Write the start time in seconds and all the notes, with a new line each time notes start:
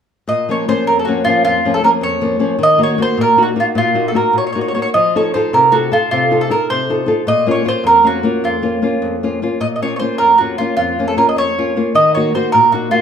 0.28 A#2 D#5
0.49 F3 A#3 C#4 C#5
0.68 F3 A#3 C#4 C5
0.87 F2 A#4
0.99 A4
1.05 F3 A#3 C#4 F#4
1.25 F3 A#3 C#4 F4
1.45 F2 F4
1.65 F3 A#3 C#4
1.74 A4
1.83 F3 A#3 C#4 A#4
2.01 F2 C#5
2.21 F3 A#3 C#4
2.39 F3 A#3 C#4
2.59 D#3
2.63 D#5
2.78 A#3 D#4 F#4
2.83 C#5
2.98 A#3 D#4 F#4
3.02 C5
3.18 A#2 A#4
3.37 A#3 D#4 F#4
3.43 F#4
3.56 A#3 D#4 F#4
3.60 F4
3.75 A#2 F4
3.94 A#3 D#4 F#4
4.08 A4
4.14 A#3 D#4 F#4 A#4
4.33 A#2
4.38 C#5
4.47 C#5
4.53 A#3 D#4 F#4 C#5
4.61 C#5
4.68 C#5
4.75 A#3 D#4 F#4 C#5
4.82 C#5
4.94 F3 D#5
5.16 D#4 F4 A4 C#5
5.34 D#4 F4 A4 C5
5.53 C3 A#4
5.72 D#4 F4 F#4 A4
5.92 D#4 F4 A4
6.11 C3 F4
6.31 D#4 F4 A4
6.41 A4
6.50 D#4 F4 A4 A#4
6.70 C3 C5
6.90 D#4 F4 A4
7.06 D#4 F4 A4
7.27 A#2 D#5
7.46 A#3 C#4 F4
7.51 C#5
7.65 A#3 C#4 F4 C5
7.84 F2 A#4
8.04 A#3 C#4 F#4 F5
8.23 A#3 C#4 F4
8.44 F2 F4
8.62 A#3 C#4 F4
8.82 A#3 C#4 F4
9.02 F2
9.23 A#3 C#4 F4
9.42 A#3 C#4 F4
9.60 A#2 D#5
9.76 D#5
9.82 A#3 C#4 F4 C#5
9.96 C5 C#5
10.01 A#3 C#4 F4
10.18 F2 A#4
10.38 A#3 C#4 F4 F#4
10.58 A#3 C#4 F4
10.77 F2 F4
10.99 A#3 C#4 F4
11.08 A4
11.17 A#3 C#4 F4 A#4
11.29 D#5
11.36 F2 C#5
11.58 A#3 C#4 F4
11.76 A#3 C#4 F4
11.95 D#3 D#5
12.15 A#3 D#4 F#4 C#5
12.34 A#3 D#4 F#4 C5
12.52 A#2 A#4
12.72 A#3 D#4 F#4
12.91 A#3 D#4 F4 F#4